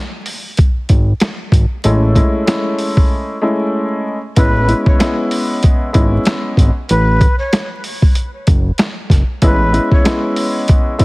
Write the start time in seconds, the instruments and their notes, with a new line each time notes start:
0.26 open hi-hat
0.57 kick, closed hi-hat
0.89 analog synth bass G#1, kick, closed hi-hat
1.20 snare, closed hi-hat
1.52 analog synth bass G#1, kick, closed hi-hat
1.84 analog synth bass A1, upright piano G#3 A3 C#4 E4, closed hi-hat
2.15 upright piano G#3 A3 C#4 E4, kick, closed hi-hat
2.46 upright piano G#3 A3 C#4 E4, snare, closed hi-hat
2.79 open hi-hat
2.97 kick
3.42 upright piano G#3 A3 C#4 E4
4.36 analog synth bass A1, upright piano G#3 B3 C#4 E4, flute B4, kick, closed hi-hat
4.67 upright piano G#3 B3 C#4 E4, closed hi-hat
4.86 flute C#5, kick
4.99 upright piano G#3 B3 C#4 E4, snare, closed hi-hat
5.31 open hi-hat
5.63 kick, closed hi-hat
5.93 analog synth bass G#1, upright piano G#3 B3 C#4 E4, kick, closed hi-hat
6.25 snare, closed hi-hat
6.57 analog synth bass G#1, kick, closed hi-hat
6.89 analog synth bass A1, flute B4, closed hi-hat
7.21 kick, closed hi-hat
7.39 flute C#5
7.53 snare, closed hi-hat
7.84 open hi-hat
8.02 kick
8.15 closed hi-hat
8.47 analog synth bass F#1, kick, closed hi-hat
8.78 snare, closed hi-hat
9.10 analog synth bass F#1, kick, snare, closed hi-hat
9.42 analog synth bass A1, upright piano G#3 B3 C#4 E4, flute B4, kick, closed hi-hat
9.72 upright piano G#3 B3 C#4 E4, closed hi-hat
9.92 flute C#5, kick
10.04 upright piano G#3 B3 C#4 E4, snare, closed hi-hat
10.36 open hi-hat
10.68 kick, closed hi-hat
10.98 analog synth bass G#1, upright piano G#3 B3 C#4 E4, kick, closed hi-hat